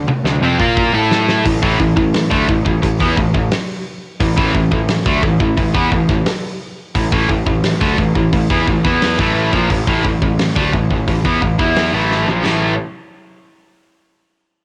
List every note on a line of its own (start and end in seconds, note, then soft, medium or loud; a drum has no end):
0.08 muted picked electric bass stroke soft
0.08 muted distorted electric guitar stroke medium
0.08 high tom medium
0.24 0.40 D2 medium
0.24 0.42 D3 medium
0.24 0.42 A3 medium
0.24 snare medium
0.41 0.57 F2 medium
0.41 0.58 F3 medium
0.41 0.58 C4 loud
0.59 0.91 A#2 loud
0.59 0.92 A#3 medium
0.59 0.93 F4 medium
0.59 0.93 A#4 loud
0.59 kick medium
0.77 kick medium
0.93 1.41 A2 medium
0.93 1.44 A3 medium
0.93 1.44 E4 medium
0.93 1.44 A4 loud
1.11 snare loud
1.29 snare medium
1.45 1.61 A1 medium
1.45 1.61 A2 medium
1.45 1.61 E3 medium
1.45 kick medium
1.45 open hi-hat medium
1.62 1.78 A1 medium
1.62 1.78 A2 medium
1.62 1.78 E3 medium
1.62 kick loud
1.80 1.95 A1 medium
1.80 1.95 A2 medium
1.80 1.96 E3 medium
1.80 kick medium
1.96 2.28 A1 medium
1.96 2.24 A2 medium
1.96 2.24 E3 medium
1.96 kick medium
2.14 snare loud
2.14 open hi-hat medium
2.31 2.47 D2 medium
2.31 2.47 D3 medium
2.31 2.47 A3 loud
2.31 kick medium
2.49 2.64 A1 medium
2.49 2.64 A2 medium
2.49 2.64 E3 medium
2.49 kick medium
2.65 2.81 A1 medium
2.65 2.81 A2 medium
2.65 2.81 E3 medium
2.65 kick medium
2.82 2.98 A1 medium
2.82 2.99 A2 medium
2.82 2.99 E3 medium
2.82 kick medium
2.82 open hi-hat medium
3.00 3.16 E2 medium
3.00 3.16 E3 medium
3.00 3.16 B3 medium
3.00 kick loud
3.17 3.33 A1 medium
3.17 3.33 A2 medium
3.17 3.33 E3 medium
3.17 kick medium
3.34 3.50 A1 medium
3.34 3.51 A2 medium
3.34 3.51 E3 medium
3.34 kick medium
3.52 snare loud
3.52 open hi-hat medium
4.20 4.36 A1 medium
4.20 4.35 A2 medium
4.20 4.36 E3 medium
4.20 kick medium
4.20 open hi-hat medium
4.36 4.53 A1 medium
4.36 4.53 A2 medium
4.36 4.53 E3 loud
4.36 kick loud
4.54 4.70 A1 medium
4.54 4.70 A2 medium
4.54 4.71 E3 medium
4.54 kick medium
4.71 5.03 A1 medium
4.71 4.99 A2 medium
4.71 4.99 E3 medium
4.71 kick medium
4.89 snare loud
4.89 open hi-hat soft
5.06 5.22 D2 medium
5.06 5.22 D3 medium
5.06 5.22 A3 medium
5.06 kick loud
5.23 5.39 A1 medium
5.23 5.39 A2 medium
5.23 5.40 E3 medium
5.23 kick medium
5.40 5.56 A1 medium
5.40 5.56 A2 medium
5.40 5.57 E3 medium
5.40 kick medium
5.57 5.73 A1 medium
5.57 5.74 A2 medium
5.57 5.73 E3 medium
5.57 kick medium
5.57 open hi-hat soft
5.74 5.90 E2 medium
5.74 5.90 E3 medium
5.74 5.91 B3 loud
5.74 kick loud
5.92 6.07 A1 medium
5.92 6.08 A2 medium
5.92 6.08 E3 medium
5.92 kick medium
6.09 6.25 A1 medium
6.09 6.26 A2 medium
6.09 6.26 E3 medium
6.09 kick medium
6.09 snare soft
6.26 snare loud
6.26 open hi-hat medium
6.95 7.11 A1 medium
6.95 7.11 A2 medium
6.95 7.11 E3 medium
6.95 kick medium
6.95 open hi-hat medium
7.12 7.28 A1 loud
7.12 7.28 A2 medium
7.12 7.28 E3 medium
7.12 kick loud
7.29 7.45 A1 medium
7.29 7.45 A2 medium
7.29 7.46 E3 medium
7.29 kick medium
7.46 7.79 A1 medium
7.46 7.74 A2 medium
7.46 7.74 E3 medium
7.46 kick medium
7.64 snare loud
7.64 open hi-hat medium
7.81 7.97 D2 medium
7.81 7.97 D3 medium
7.81 7.97 A3 medium
7.81 kick loud
7.98 8.14 A1 medium
7.98 8.15 A2 medium
7.98 8.15 E3 medium
7.98 kick medium
8.15 8.31 A1 medium
8.15 8.32 A2 medium
8.15 8.32 E3 medium
8.15 kick medium
8.33 8.48 A1 medium
8.33 8.50 A2 medium
8.33 8.49 E3 medium
8.33 kick medium
8.33 open hi-hat soft
8.50 8.66 E2 medium
8.50 8.66 E3 medium
8.50 8.66 B3 medium
8.50 kick loud
8.67 8.83 A1 medium
8.67 8.84 A2 medium
8.67 8.83 E3 medium
8.67 kick medium
8.85 9.16 E2 medium
8.85 9.17 E3 medium
8.85 9.18 B3 medium
8.85 9.18 E4 medium
8.85 kick loud
8.85 snare soft
9.02 snare loud
9.02 open hi-hat medium
9.19 9.50 A1 medium
9.19 9.52 A2 medium
9.19 9.53 E3 medium
9.19 9.53 A3 medium
9.19 kick loud
9.53 9.69 A#1 medium
9.53 9.69 A#2 medium
9.53 9.69 F3 loud
9.53 kick medium
9.70 9.86 A1 medium
9.70 9.86 A2 medium
9.70 9.87 E3 medium
9.70 kick medium
9.70 open hi-hat medium
9.87 10.03 A1 loud
9.87 10.03 A2 medium
9.87 10.04 E3 medium
9.87 kick loud
10.05 10.20 A1 medium
10.05 10.21 A2 medium
10.05 10.22 E3 medium
10.05 kick medium
10.22 10.54 A1 medium
10.22 10.49 A2 medium
10.22 10.50 E3 medium
10.22 kick loud
10.39 snare loud
10.39 open hi-hat medium
10.56 10.72 D2 medium
10.56 10.72 D3 medium
10.56 10.73 A3 medium
10.56 kick loud
10.73 10.89 A1 medium
10.73 10.91 A2 medium
10.73 10.91 E3 medium
10.73 kick medium
10.91 11.06 A1 medium
10.91 11.07 A2 medium
10.91 11.07 E3 medium
10.91 kick medium
11.08 11.23 A1 medium
11.08 11.25 A2 medium
11.08 11.24 E3 medium
11.08 kick medium
11.08 open hi-hat soft
11.25 11.41 E2 medium
11.25 11.41 E3 medium
11.25 11.41 B3 medium
11.25 kick loud
11.42 11.58 A1 medium
11.42 11.59 A2 medium
11.42 11.58 E3 medium
11.42 kick medium
11.59 11.91 E2 medium
11.59 11.92 E3 medium
11.59 11.93 B3 medium
11.59 11.93 E4 medium
11.59 kick medium
11.76 snare loud
11.76 open hi-hat medium
11.93 12.25 A1 medium
11.93 12.26 A2 medium
11.93 12.27 E3 loud
11.93 12.27 A3 medium
12.11 snare medium
12.28 12.44 A#1 loud
12.28 12.44 A#2 medium
12.28 12.44 F3 medium
12.28 snare medium
12.45 12.77 A1 medium
12.45 12.72 A2 medium
12.45 12.73 E3 loud
12.45 12.73 A3 medium
12.45 snare medium
12.45 splash medium